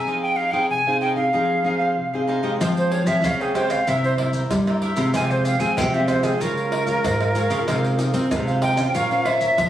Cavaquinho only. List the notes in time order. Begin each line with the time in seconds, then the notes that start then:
0.07 D#4 G#4 C5 F5
0.38 D#4 G#4 C5 F5
0.53 D#4 G#4 C5 F5
0.87 G#4 C5 F5
1.01 D#4 G#4 C5 F5
1.16 G#4 C5 F5
1.33 D#4 G#4 C5 F5
1.64 D#4 G#4 C5 F5
1.79 G#4 C5 F5
2.13 G#4 C5 F5
2.28 D#4 G#4 C5 F5
2.43 D#4 G#4 C5 F5
2.60 G#4 C5 F5 G5
2.91 G#4 C5 F5 G5
3.06 G#4 C5 F5 G5
3.40 C5 F5 G5
3.55 G#4 C5 F5 G5
3.70 C5 F5 G5
3.88 E4 A#4 C5 E5
4.19 E4 A#4 C5 E5
4.33 A#4 C5 E5
4.67 A#4 C5 E5
4.82 E4 A#4 C5 E5
4.97 E4 A#4 C5 E5
5.14 G#4 C5 F5 G5
5.45 G#4 C5 F5 G5
5.59 G#4 C5 F5 G5
5.93 C5 F5 G5
6.08 G#4 C5 F5 G5
6.23 C5 F5 G5
6.40 F4 A#4 C#5 F5
6.71 F4 A#4 C#5 F5
6.86 A#4 C#5 F5
7.20 A#4 C#5 F5
7.35 F4 A#4 C#5 F5
7.51 F4 A#4 C#5 F5
7.68 D#4 G#4 C5 F5
7.98 D#4 G#4 C5 F5
8.13 D#4 G#4 C5 F5
8.47 G#4 C5 F5
8.62 D#4 G#4 C5 F5
8.77 G#4 C5 F5
8.94 F4 A#4 C#5 F5
9.25 F4 A#4 C#5 F5
9.42 A#4 C#5